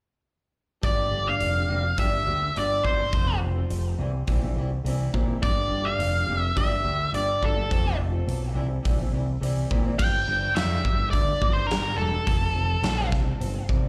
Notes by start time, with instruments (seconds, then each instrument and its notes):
0.81 picked electric bass G1, steel-string acoustic guitar G2 D3 G3 A#3 D4 G4, lead electric guitar D5, kick, open hi-hat
1.11 picked electric bass G1
1.26 steel-string acoustic guitar G3 A#3 D4 G4, lead electric guitar F5
1.40 picked electric bass F1, open hi-hat
1.68 picked electric bass F1, steel-string acoustic guitar G3 A#3 D4 G4
1.84 muted steel-string acoustic guitar stroke
1.97 picked electric bass G1, steel-string acoustic guitar G2 D3 G3 A#3 D4 G4, lead electric guitar E5, kick, open hi-hat
2.11 steel-string acoustic guitar G3 A#3 D4 G4
2.25 picked electric bass D2, steel-string acoustic guitar G3 A#3 D4 G4
2.40 muted steel-string acoustic guitar stroke
2.54 picked electric bass G1, steel-string acoustic guitar G2 D3 G3 A#3 D4 G4, lead electric guitar D5, open hi-hat
2.84 picked electric bass G1, steel-string acoustic guitar G3 A#3 G4, lead electric guitar C5, kick
2.97 steel-string acoustic guitar G3 A#3 D4 G4
3.12 picked electric bass F1, steel-string acoustic guitar F2 C3 F3 A3 C4 F4, kick, open hi-hat
3.41 picked electric bass F1
3.54 steel-string acoustic guitar F3 A3 C4 F4
3.70 picked electric bass F1, open hi-hat
3.98 picked electric bass C2, steel-string acoustic guitar C3 E3 G3 C4 E4
4.13 muted steel-string acoustic guitar stroke
4.27 picked electric bass A#1, steel-string acoustic guitar C3 E3 G3 C4 E4, kick, open hi-hat
4.41 steel-string acoustic guitar G3 C4 E4
4.56 picked electric bass C2, steel-string acoustic guitar E3 G3 C4 E4
4.72 muted steel-string acoustic guitar stroke
4.84 picked electric bass C2, steel-string acoustic guitar C3 E3 G3 C4 E4, open hi-hat
5.13 picked electric bass A#2, steel-string acoustic guitar E3 G3 C4 E4, kick
5.27 steel-string acoustic guitar G3 C4 E4
5.42 picked electric bass G1, steel-string acoustic guitar G2 D3 G3 A#3 D4 G4, lead electric guitar D5, kick, open hi-hat
5.70 picked electric bass G1
5.83 steel-string acoustic guitar G3 A#3 D4 G4, lead electric guitar F5
5.99 picked electric bass F1, open hi-hat
6.26 picked electric bass F1, steel-string acoustic guitar G3 A#3 D4 G4
6.36 lead electric guitar E5
6.42 muted steel-string acoustic guitar stroke
6.54 picked electric bass G1, steel-string acoustic guitar G2 D3 G3 A#3 D4 G4, lead electric guitar E5, kick, open hi-hat
6.69 steel-string acoustic guitar G3 A#3 D4 G4
6.82 picked electric bass D2, steel-string acoustic guitar G3 A#3 D4 G4
6.98 muted steel-string acoustic guitar stroke
7.12 picked electric bass G1, steel-string acoustic guitar G2 D3 G3 A#3 D4 G4, lead electric guitar D5, open hi-hat
7.41 picked electric bass G1, steel-string acoustic guitar G3 A#3 D4 G4, lead electric guitar A4, kick
7.54 steel-string acoustic guitar G3 A#3 D4 G4
7.69 picked electric bass F1, steel-string acoustic guitar F2 C3 F3 A3 C4 F4, kick, open hi-hat
7.98 picked electric bass F1
8.11 steel-string acoustic guitar F3 A3 C4 F4
8.27 picked electric bass B1, open hi-hat
8.53 picked electric bass C2, steel-string acoustic guitar C3 E3 G3 C4 E4
8.70 muted steel-string acoustic guitar stroke
8.83 picked electric bass A#1, steel-string acoustic guitar C3 E3 G3 C4 E4, kick, open hi-hat
8.98 steel-string acoustic guitar G3 C4 E4
9.12 picked electric bass C2, steel-string acoustic guitar E3 G3 C4 E4
9.27 muted steel-string acoustic guitar stroke
9.40 picked electric bass C2, steel-string acoustic guitar C3 E3 G3 C4 E4, open hi-hat
9.69 picked electric bass A#2, steel-string acoustic guitar E3 G3 C4 E4, kick
9.83 steel-string acoustic guitar G3 C4 E4
9.98 picked electric bass G1, steel-string acoustic guitar G2, lead electric guitar G5, kick, crash
10.27 picked electric bass G1, steel-string acoustic guitar D3
10.56 picked electric bass F2, steel-string acoustic guitar G3, lead electric guitar E5, snare, open hi-hat
10.84 picked electric bass G1, steel-string acoustic guitar A#3, kick
11.10 picked electric bass D2, steel-string acoustic guitar D4, lead electric guitar D5, kick, open hi-hat
11.41 picked electric bass G1, steel-string acoustic guitar A#3, kick
11.53 lead electric guitar C5
11.67 picked electric bass G1, steel-string acoustic guitar G4, lead electric guitar A#4
11.71 snare, open hi-hat
11.98 picked electric bass E1, steel-string acoustic guitar A#3, lead electric guitar A4
12.26 picked electric bass F1, steel-string acoustic guitar F2, kick, open hi-hat
12.55 picked electric bass F1, steel-string acoustic guitar C3
12.82 picked electric bass A#1, steel-string acoustic guitar F3, snare, open hi-hat
13.11 picked electric bass C2, steel-string acoustic guitar C3, kick, snare
13.40 picked electric bass G1, steel-string acoustic guitar C4, open hi-hat
13.69 picked electric bass C2, steel-string acoustic guitar G3, kick